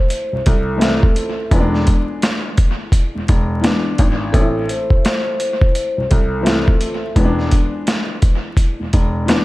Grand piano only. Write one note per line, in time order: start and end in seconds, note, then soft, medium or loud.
0.33 0.38 C2 soft
0.47 0.99 C2 medium
1.52 1.84 E1 loud
3.15 3.20 E1 soft
3.29 3.61 E1 loud
3.99 4.31 G#1 medium
4.34 4.66 A1 loud
5.98 6.03 C2 soft
6.12 6.64 C2 medium
7.16 7.49 E1 loud
8.80 8.85 E1 soft
8.94 9.26 E1 medium